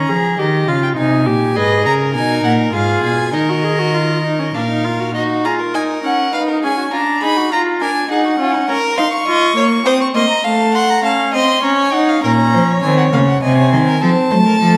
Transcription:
Already playing: viola C#4, violin A#5
0.09 cello F3, viola G#4
0.38 cello D#3, viola G4, violin D#5
0.68 cello C#3, viola F4, violin F5
0.83 violin G5
0.97 cello C3, viola D#4, violin G#5
1.26 cello A#2, viola G4
1.55 cello G#2, viola G#4, violin B4 D#5
1.85 cello C#3, violin A#4 A#5
2.15 cello B2, viola D#4, violin G#5
2.44 cello A#2, violin F#5
2.73 cello G#2, viola F4, violin G#4 F5
3.03 cello B2, violin G#5
3.33 cello D#3, viola D#4, violin A#4 D#5
3.49 viola F#4
3.64 viola G#4
3.79 viola F#4
3.94 viola F4
4.24 viola D#4
4.39 viola C#4
4.54 cello A#2, viola D4, violin A#4 F5
4.69 viola D#4
4.85 viola F4
5.00 viola F#4
5.14 viola D#4, violin F#4 D#5
5.45 viola F4, violin G#4 A#5
5.60 violin A#4
5.74 viola D#4, violin G#5
6.04 viola C#4, violin F#5
6.33 viola D#4, violin B4 F5
6.48 violin A#4
6.63 viola C#4, violin G#4 G#5
6.78 violin F#4
6.93 viola D4, violin F4 A#5
7.22 viola D#4, violin G#4 B5
7.37 violin F#4
7.52 violin F4 A#5, viola F4
7.81 viola D4, violin A#4 G#5
8.10 viola D#4, violin G#4 F#5
8.25 violin F#4
8.39 viola C#4, violin F4
8.54 violin D#4
8.69 viola C#4, violin A#4 A#5
8.98 viola D#4, violin F5 C6
9.13 violin C#6
9.28 viola F4, violin D#5
9.57 viola A#3, violin C#5
9.86 viola C4, violin C5 D#6
10.01 violin C#6
10.15 viola A#3, violin D#5 C6
10.30 violin A#5
10.44 viola A3, violin F5 A5
10.75 violin F#5 C6
10.90 violin A#5
11.04 viola C#4, violin F5 A5
11.34 viola C4, violin D#5 C6
11.63 viola C#4, violin C#5 A#5
11.79 violin G#5
11.94 viola D#4, violin F#5
12.09 violin F5
12.23 cello A#2, viola C#4, violin A#4 A#5
12.53 cello F3, violin C5
12.68 violin C#5
12.83 cello D#3, viola C4, violin G#5
12.98 violin F#5
13.13 cello C#3, viola A#3, violin F5
13.28 violin F#5
13.43 cello C3, viola C4, violin D#5 G#5
13.58 violin C#5
13.72 cello D#3, violin C5
13.87 violin A#4
14.01 cello F3, viola C4, violin A4 A5
14.31 cello F#3, viola A3, violin C5
14.45 violin A#4
14.60 cello F3, violin A4

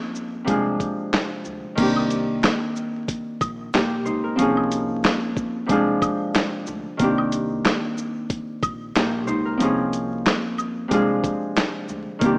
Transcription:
Already playing: harp F3 A#3 C4 C#4 D#4 G#4 A#4
0.15 shaker
0.44 upright bass C2, harp C3 F3 G#3 D4, kick, closed hi-hat
0.49 harp F4 G#4
0.80 kick, closed hi-hat, shaker
1.13 snare, clap, closed hi-hat
1.45 upright bass D2, shaker
1.75 upright bass C2, harp D#3 A#3 C4, kick, closed hi-hat, crash, shaker
1.80 harp D4 G4
1.96 high woodblock
2.10 closed hi-hat, shaker
2.43 snare, clap, closed hi-hat, shaker
2.76 shaker
3.08 kick, closed hi-hat, shaker
3.41 upright bass A#1, kick, closed hi-hat, high woodblock, shaker
3.73 upright bass A#1, harp A#3 G4, snare, clap, closed hi-hat, shaker
4.05 upright bass C#2, harp D#4 C5, shaker
4.24 harp A#4
4.36 upright bass C2, harp F3 A#3 C4 C#4, closed hi-hat, shaker
4.41 harp D#4 G#4
4.57 high woodblock
4.72 closed hi-hat, shaker
5.04 snare, clap, closed hi-hat, shaker
5.36 kick, shaker
5.66 upright bass C2, harp C3 F3 G#3 D4, kick, closed hi-hat, shaker
5.71 harp F4 G#4
6.02 kick, closed hi-hat, high woodblock, shaker
6.34 snare, clap, closed hi-hat, shaker
6.67 upright bass D2, shaker
6.97 upright bass C2, harp D#3 A#3 C4, kick, closed hi-hat, shaker
7.02 harp D4 G4
7.18 high woodblock
7.32 closed hi-hat, shaker
7.65 snare, clap, closed hi-hat, shaker
7.97 shaker
8.30 kick, closed hi-hat, shaker
8.63 upright bass A#1, kick, closed hi-hat, high woodblock, shaker
8.95 upright bass A#1, harp A#3 G4, snare, clap, closed hi-hat, shaker
9.27 upright bass C#2, harp D#4 C5, shaker
9.45 harp A#4
9.57 upright bass C2, harp F3 A#3 C4 C#4, closed hi-hat, shaker
9.62 harp D#4 G#4
9.93 closed hi-hat, shaker
10.26 snare, clap, closed hi-hat, shaker
10.58 high woodblock, shaker
10.88 upright bass C2, harp C3 F3 G#3 D4, kick, closed hi-hat, shaker
10.93 harp F4 G#4
11.24 kick, closed hi-hat, shaker
11.56 snare, clap, closed hi-hat, shaker
11.89 upright bass D2, shaker
12.19 upright bass C2, harp D#3 A#3 C4, kick, closed hi-hat, shaker
12.24 harp D4 G4

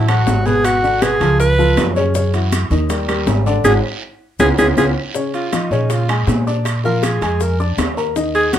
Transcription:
Already playing: upright bass A1
0.08 grand piano F#3 F#4 A4, alto saxophone F#4, high conga, high timbale, claves, maracas
0.27 upright bass G#1, high bongo, low bongo, high conga, low timbale, short guiro, maracas
0.46 grand piano B2 B3 B4, alto saxophone G#4, high conga, short guiro, maracas
0.65 alto saxophone F#4, high bongo, high conga, high timbale, long guiro, claves, maracas
0.83 grand piano D3 D4 F#4, high bongo, high conga, maracas
1.02 grand piano B2 B3 B4, alto saxophone G#4, high bongo, high conga, high timbale, short guiro, claves, maracas
1.20 upright bass C#2, grand piano F3 F4 A4, high bongo, high conga, high timbale, short guiro, maracas
1.40 alto saxophone B4, high bongo, high conga, long guiro, maracas
1.58 grand piano F3 F4 A4, high bongo, high conga, maracas
1.76 upright bass F#2, high bongo, low bongo, high conga, high timbale, low timbale, short guiro, claves, maracas
1.96 grand piano C#3 C#4 C#5, high conga, short guiro, maracas
2.15 grand piano C#3 C#4 C#5, high bongo, high conga, long guiro, maracas
2.33 grand piano E3 E4 F#4, high conga, high timbale, maracas
2.52 high bongo, high conga, high timbale, short guiro, claves, maracas
2.70 upright bass D#2, grand piano D#3 D#4 D#5, high conga, short guiro, maracas
2.90 grand piano G3 G4 A#4, high bongo, high conga, high timbale, long guiro, maracas
3.08 grand piano G3 G4 A#4, high conga, high timbale, claves, maracas
3.27 upright bass G#1, high bongo, low bongo, high conga, low timbale, short guiro, maracas
3.46 grand piano D3 D4 D5, high conga, short guiro, maracas
3.64 upright bass G#1, grand piano D4 F#4 G#4, alto saxophone G#4, low bongo, high conga, high timbale, long guiro, claves, maracas
4.39 upright bass C#2, grand piano B3 C#4 F4, alto saxophone G#4, low bongo, high conga, high timbale, long guiro, claves, maracas
4.58 upright bass C#2, grand piano B3 C#4 F4, alto saxophone G#4, low bongo, high conga, high timbale, long guiro, claves, maracas
4.77 upright bass C#2, grand piano B3 C#4 F4, alto saxophone G#4, low bongo, high conga, high timbale, long guiro, claves, maracas
5.15 grand piano C#3 C#4 C#5, high bongo, high conga, long guiro, maracas
5.34 alto saxophone F4, high conga, high timbale, maracas
5.52 grand piano F3 F4 F5, alto saxophone D#4, high bongo, high conga, high timbale, short guiro, claves, maracas
5.71 upright bass A#2, grand piano C#3 C#4 C#5, high conga, short guiro, maracas
5.90 alto saxophone F4, high bongo, high conga, high timbale, long guiro, maracas
6.09 grand piano G#3 G#4 G#5, high conga, high timbale, claves, maracas
6.27 upright bass A#2, high bongo, low bongo, high conga, low timbale, short guiro, maracas
6.47 grand piano D4 D5 D6, high conga, short guiro, maracas
6.65 high bongo, high conga, high timbale, long guiro, claves, maracas
6.84 grand piano F3 F4 F5, alto saxophone A#4, high bongo, high conga, maracas
7.03 alto saxophone G#4, high bongo, high conga, high timbale, short guiro, claves, maracas
7.21 upright bass F2, grand piano G#3 G#4 G#5, high bongo, high conga, high timbale, short guiro, maracas
7.40 alto saxophone A#4, high bongo, high conga, long guiro, maracas
7.60 grand piano D4 D5 D6, high bongo, high conga, maracas
7.77 upright bass D#2, high bongo, low bongo, high conga, high timbale, low timbale, short guiro, claves, maracas
7.97 grand piano A#3 A#4 A#5, high conga, short guiro, maracas
8.16 grand piano D#3 D#4 D#5, high bongo, high conga, long guiro, maracas
8.35 alto saxophone G#4, high conga, high timbale, maracas
8.53 grand piano F#3 F#4 F#5, alto saxophone F#4, high bongo, high conga, high timbale, short guiro, claves, maracas

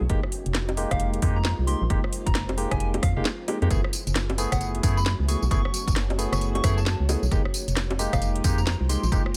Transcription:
0.01 fm bass B1
0.09 fm bass F1, string machine G#3 A#3 D#4 G4, tine electric piano G#3 A#3 D#4 G4, ambient pad F4, kick, closed hi-hat
0.23 ambient pad C5, cross-stick
0.32 open hi-hat
0.46 fm bass F1, closed hi-hat
0.55 snare
0.69 closed hi-hat, high bongo
0.77 tine electric piano G#3 A#3 D#4 G4, open hi-hat
0.91 fm bass F1, soft synth lead F5, kick, cross-stick, closed hi-hat
1.00 closed hi-hat
1.14 closed hi-hat
1.22 fm bass F2, tine electric piano G#3 A#3 D#4 G4, kick, open hi-hat
1.36 soft synth lead A#5
1.45 soft synth lead A#5, snare
1.59 fm bass C2
1.67 tine electric piano G#3 A#3 D#4 G4, soft synth lead C6, open hi-hat
1.82 fm bass A#1
1.90 fm bass F1, tine electric piano G#3 A#3 D#4 G4, string machine F4, kick, closed hi-hat
2.04 cross-stick
2.13 open hi-hat
2.26 fm bass F1, soft synth lead A#5, kick, closed hi-hat
2.35 snare
2.49 closed hi-hat, high bongo
2.58 tine electric piano G#3 A#3 D#4 G4, open hi-hat
2.71 fm bass F1, soft synth lead G#5, kick, cross-stick, closed hi-hat
2.80 soft synth lead G#5, closed hi-hat
2.94 closed hi-hat, high bongo
3.02 fm bass F2, soft synth lead F5, kick, cross-stick, open hi-hat
3.17 fm bass F1, tine electric piano G#3 A#3 D#4 G4, soft synth lead F5
3.25 snare
3.48 tine electric piano G#3 A#3 D#4 G4, open hi-hat, high bongo
3.62 fm bass F2, tine electric piano G#3 A#3 D#4 G4, closed hi-hat
3.70 fm bass F#1, string machine A3 B3 E4 G#4, tine electric piano A3 B3 E4 G#4, ambient pad F#4, kick, closed hi-hat, tambourine
3.75 ambient pad C#5
3.84 cross-stick
3.93 open hi-hat, tambourine
4.07 fm bass F#1, closed hi-hat, tambourine
4.16 snare, tambourine
4.30 closed hi-hat, high bongo
4.38 tine electric piano A3 B3 E4 G#4, open hi-hat, tambourine
4.52 fm bass F#1, soft synth lead F#5, kick, cross-stick, closed hi-hat, tambourine
4.61 closed hi-hat, tambourine
4.75 closed hi-hat
4.83 fm bass F#2, tine electric piano A3 B3 E4 G#4, kick, open hi-hat, tambourine
4.97 soft synth lead B5, tambourine
5.06 snare
5.20 fm bass C#2
5.28 tine electric piano A3 B3 E4 G#4, soft synth lead C#6, open hi-hat, tambourine
5.42 fm bass B1, tambourine
5.51 fm bass F#1, tine electric piano A3 B3 E4 G#4, string machine F#4, soft synth lead C#6, kick, closed hi-hat, tambourine
5.65 cross-stick
5.74 open hi-hat, tambourine
5.88 fm bass F#1, kick, closed hi-hat, tambourine
5.96 snare
6.10 closed hi-hat, high bongo
6.18 tine electric piano A3 B3 E4 G#4, open hi-hat, tambourine
6.32 fm bass F#1, soft synth lead C#6, cross-stick, closed hi-hat, tambourine
6.41 closed hi-hat, tambourine
6.55 soft synth lead C#6, closed hi-hat, high bongo
6.64 fm bass F#2, tine electric piano A3 B3 E4 G#4, kick, cross-stick, open hi-hat, tambourine
6.77 soft synth lead A5, tambourine
6.86 soft synth lead A5, snare, tambourine
7.00 fm bass C#2
7.09 tine electric piano A3 B3 E4 G#4, open hi-hat, tambourine, high bongo
7.23 fm bass B1, tambourine
7.31 fm bass F1, string machine G#3 A#3 D#4 G4, tine electric piano G#3 A#3 D#4 G4, ambient pad F4, kick, closed hi-hat, tambourine
7.45 cross-stick
7.50 ambient pad C5, open hi-hat, tambourine
7.68 fm bass F1, closed hi-hat, tambourine
7.77 snare, tambourine
7.90 closed hi-hat, high bongo
7.99 tine electric piano G#3 A#3 D#4 G4, open hi-hat, tambourine
8.13 fm bass F1, soft synth lead F5, kick, cross-stick, closed hi-hat, tambourine
8.22 closed hi-hat, tambourine
8.36 closed hi-hat
8.44 fm bass F2, tine electric piano G#3 A#3 D#4 G4, kick, open hi-hat, tambourine
8.58 soft synth lead A#5, tambourine
8.67 soft synth lead A#5, snare, tambourine
8.81 fm bass C2
8.89 tine electric piano G#3 A#3 D#4 G4, soft synth lead C6, open hi-hat, tambourine
9.03 fm bass A#1, tambourine
9.12 fm bass F1, tine electric piano G#3 A#3 D#4 G4, string machine F4, kick, closed hi-hat, tambourine
9.26 cross-stick

